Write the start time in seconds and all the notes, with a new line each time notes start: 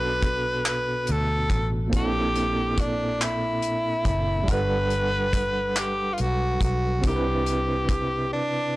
Already playing: B1 B2 B3 D4 F#4 A4 B4
0.23 kick, closed hi-hat
0.65 B4, clap, closed hi-hat
1.07 D2, closed hi-hat
1.11 A4
1.50 A1, kick, closed hi-hat
1.87 A#2 A#3
1.92 A#1 C4 D4, kick, closed hi-hat
1.96 E4 G4 A4
2.36 closed hi-hat
2.78 D4, kick, closed hi-hat
3.21 E4, clap, closed hi-hat
3.62 closed hi-hat
4.05 F#1, kick, closed hi-hat
4.43 G3 D4
4.48 G1 A4 B4 F#5, kick, closed hi-hat
4.54 B4
4.90 closed hi-hat
5.33 kick, closed hi-hat
5.76 G4, clap, closed hi-hat
6.13 F4
6.18 B1 F#4, closed hi-hat
6.61 B1 F#4, kick, closed hi-hat
6.99 C3 C4
7.04 C2 D4 E4 G4, kick, closed hi-hat
7.09 A#4
7.16 B4
7.46 closed hi-hat
7.89 kick, closed hi-hat
8.33 D4